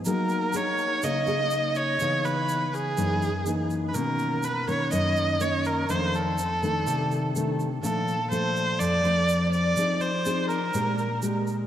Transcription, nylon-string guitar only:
0.06 F#3 A#3 D#4 G#4
0.53 A#3 D#4 G#4
1.03 C#3 A#3 D#4 G#4
1.27 A#3 D#4 G#4
2.00 C#3 E3 B3 D#4
2.97 F#2 E3 A#3 D#4
3.46 E3 A#3 D#4
3.94 B2 D#3 A#3 C#4
4.67 D#3 A#3 C#4
4.92 F#2
5.40 D#3 A#3 C#4
5.89 F2 D#3 A3 D4
6.62 D#3 A3 D4
6.87 C3
7.35 D#3 A3 D4
7.83 A#2 F3 A3 D4
8.31 F3 A3 D4
8.80 F2
9.04 F3 A3 D4
9.77 F3 C4 D#4 G#4
10.25 C4 D#4 G#4
10.74 A#2 G#3 D4 G4
11.22 G#3 D4 G4

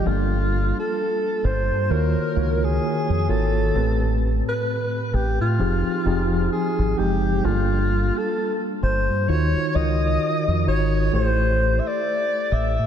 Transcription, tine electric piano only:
0.05 G3 A#3 D4 F4 A4
1.89 D#3 A#3 F4 F#4 C#5
2.36 D#3 A#3 F4 F#4 C#5
3.28 D#3 A#3 F4 F#4 C#5
3.74 A2 A3 C4 G4 B4
5.58 F3 C4 D#4 G4 G#4
6.05 F3 C4 D#4 G4 G#4
6.97 F3 G#3 C4 D#4 G4
7.43 G3 A#3 D4 F4 A4
9.28 D#3 D#4 F4 F#4 C#5
9.74 D#3 D#4 F4 F#4 A#4
10.66 D#3 D#4 F4 F#4 C#5
11.13 A3 E4 G4 A4 C5

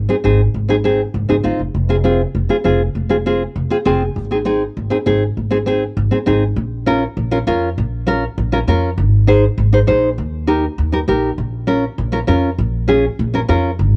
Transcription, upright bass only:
0.24 G#1
0.54 G#1
1.14 G#1
1.29 G#1
1.44 G1
1.59 F1
1.75 F1
2.35 F1
2.65 F1
2.95 F1
3.56 F1
3.86 F1
4.16 G#1
4.77 G#1
5.06 G#1
5.37 G#1
5.97 G#1
6.27 G#1
6.56 A#1
7.17 A#1
7.47 F2
7.78 A#1
8.38 A#1
8.67 F2
8.98 G#1
9.58 G#1
9.88 A#1
10.18 D#2
10.78 D#2
11.08 A#1
11.38 A#1
11.98 A#1
12.28 F2
12.58 A#1
13.19 A#1
13.49 F2
13.79 G#1

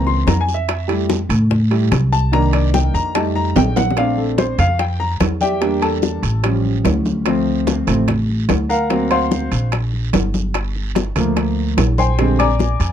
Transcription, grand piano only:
Already playing: E3 A#3 C4
0.07 C6
0.27 A#5
0.41 G#5
0.54 E5
0.88 G3 A3 E4
1.71 G3 A3 E4
2.13 A5
2.32 D#3 A#3 D4 A#5
2.54 D5
2.74 G5
2.94 A#5
3.15 G3 A3 D#4 A5
3.36 A#5
3.57 G5
3.77 F#5
3.96 A3 C4 D4 F5
4.18 A4
4.39 C5
4.59 F5
4.79 G5
5.00 A#5
5.41 G4 D5 E5 G5
5.61 G3 A#3 D4
5.82 A4 A5
6.43 F3 G3 C#4
7.25 F3 A3 C4
7.87 F3 A3 C4
8.69 A#4 F5 F#5 A#5
8.90 F#3 A#3 C4
9.11 C5 F5 F#5 C6
11.16 F3 A3 A#3
11.98 C5 G5 G#5 C6
12.18 D3 G3 G#3 C4
12.39 D5 G#5 A#5 D6

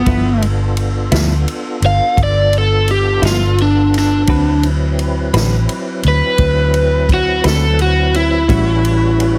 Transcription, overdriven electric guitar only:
Already playing: B3
1.86 F5
2.23 D5
2.58 A4
2.91 G4
3.26 F4
3.62 D4
3.98 D4
6.08 B4
7.13 F#4
7.46 A4
7.82 F#4
8.16 E4

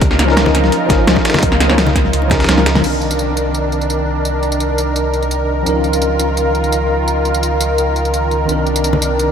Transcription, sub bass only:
0.02 C#2
0.90 G#1
0.99 G#1
1.07 C#2
1.43 C#2
2.13 C#2
2.48 C#2
2.84 C2
5.66 C#2
8.49 C2

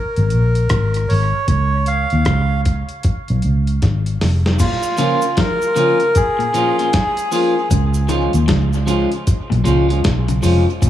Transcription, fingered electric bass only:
0.18 G#1
0.33 A#1
0.71 G#1
1.11 G#1
1.49 C#2
2.13 D#2
2.27 C#2
3.30 B1
3.45 C#2
3.83 G#1
4.23 F1
7.71 C#2
8.34 D#2
8.49 C#2
9.52 B1
9.66 C#2
10.06 B1
10.44 F1
10.83 A#1

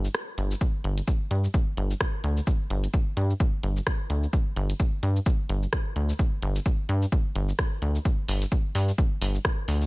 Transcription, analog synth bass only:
0.38 G1
0.84 G1
1.31 G2
1.77 G1
2.24 D2
2.70 G1
3.17 G2
3.63 G1
4.10 D2
4.56 G1
5.03 G2
5.49 G1
5.96 D2
6.42 G1
6.89 G2
7.35 G1
7.82 D2
8.28 G1
8.75 G2
9.21 G1
9.68 D2

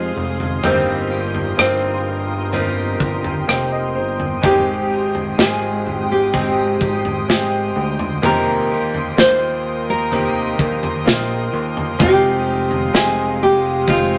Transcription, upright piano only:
Already playing: G#3 C4 D#4 F4 G#4
0.63 G2 G3 A#3 C4 D#4 G4
1.57 A#3 C4 D#4 F4
2.52 A#3 C4 D#4 F4
3.47 A#3 C4 D#4 G4 G5
3.72 D#5
3.95 C5
4.42 G#2 D#3 G#3 C4 D#4 G4
5.37 G#3 C4 D#4 F4
6.33 G#3 C4 D#4 G4
7.28 G#3 C4 D#4 G4
8.22 A#2 A#3 C4 D#4 G4
9.17 A#3 C4 D#4 F4
10.11 A#3 C4 D#4 G4
11.05 A#3 C4 D#4 F4
11.99 C3 G#3 C4 D#4 F4
12.93 G#3 C4 D#4 G5
13.87 G#3 C4 D#4 G4

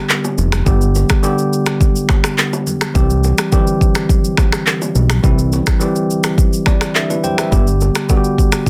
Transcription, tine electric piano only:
Already playing: D3 G3 B3 G4
0.65 D3 G3 B3 G4
1.22 D3 G3 B3 G4
2.94 E3 G3 C4 G4
3.51 D3 G3 C4 G4
3.58 E3
5.22 E3 G3 C4 E4
5.80 E3 G3 C4 G4
6.66 D5
6.95 D4 G4 E5
7.10 E4 B4
7.24 G4 C5 G5
7.39 B4 E5
7.51 D3 G3 B3 G4
8.08 D3 G3 B3 F#4
8.17 G4

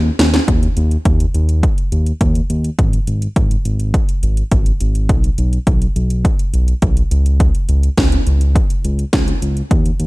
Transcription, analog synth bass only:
Already playing: D#2
0.19 D#2
0.48 D#2
0.77 D#2
1.05 D#2
1.34 D#2
1.92 D#2
2.21 D#2
2.50 D#2
2.79 G#1
3.07 G#1
3.36 G#1
3.65 G#1
4.23 G#1
4.52 G#1
4.81 G#1
5.09 B1
5.38 B1
5.67 B1
5.96 B1
6.54 B1
6.82 B1
7.11 C#2
7.69 C#2
7.98 C#2
8.27 C#2
8.84 C#2
9.13 C#2
9.42 C#2
9.71 D#2
10.00 D#2

